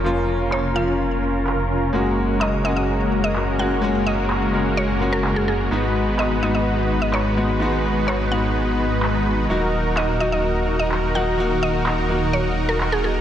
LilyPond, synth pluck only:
\new Staff \with { instrumentName = "Synth pluck" } { \time 4/4 \key fis \major \tempo 4 = 127 r4 cis''16 r16 eis''4. r4 | r4 dis''16 r16 dis''16 dis''16 r8. dis''16 r8 fis''16 r16 | r8 dis''16 r4 r16 cis''8. ais'16 r16 gis'16 gis'16 r16 | r4 dis''16 r16 dis''16 dis''16 r8. dis''16 cis''16 r8. |
r4 cis''16 r16 fis''4. r4 | r4 dis''16 r16 dis''16 dis''16 r8. dis''16 r8 fis''16 r16 | r8 dis''16 r4 r16 cis''8. ais'16 r16 gis'16 gis'16 r16 | }